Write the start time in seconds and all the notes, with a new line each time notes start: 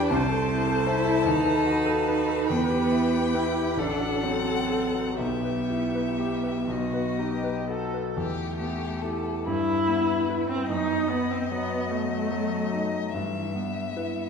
Already playing: E2 D4 E4 G4 B4
0.09 C2 C4 C5 A5
0.29 A4
0.48 E4
0.67 A4
0.86 E4 C5
1.05 A4
1.25 D#2 D#4 B4
1.46 A4
1.66 F#4
1.86 A4
2.08 D#4 B4
2.29 A4
2.50 E2 B3 G5
2.70 G4
2.92 E4
3.13 G4
3.34 E4 B4
3.55 G4
3.77 A1 D4 A4 F#5
4.00 F#4
4.23 F#3 C4
4.45 F#4
4.70 A4
4.95 F#4
5.19 B1 B3 G4 E5
5.44 B4
5.70 E4
5.95 B4
6.19 G4
6.44 B4
6.68 B1 F#4 D#5
6.93 B4
7.19 D#4 G4
7.44 B4
7.70 F#4 A4
7.94 B4
8.16 E2 A3 G4
8.59 B3 G4
9.01 E4 G4 A4
9.45 G2 G3 E4 B4
9.88 B3
10.29 E4 B4
10.50 C4
10.67 F#2 B3 D#4 D#5
11.10 B3
11.31 C4
11.50 F#3 B3
11.88 F#3 A3 B3
12.31 F#3
12.72 D#4
13.13 G2 E3 E5
13.54 G3 B3
13.95 B3 E4 B4